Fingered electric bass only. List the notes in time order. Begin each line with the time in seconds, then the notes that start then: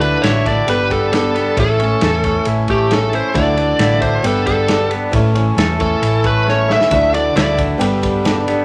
Already playing: D2
0.23 A1
0.68 G1
1.57 A1
2.02 E2
2.46 A1
3.35 D2
3.79 A1
4.24 G1
5.13 A1
5.57 E2
6.02 A1
6.91 D2
7.36 D2
7.81 G1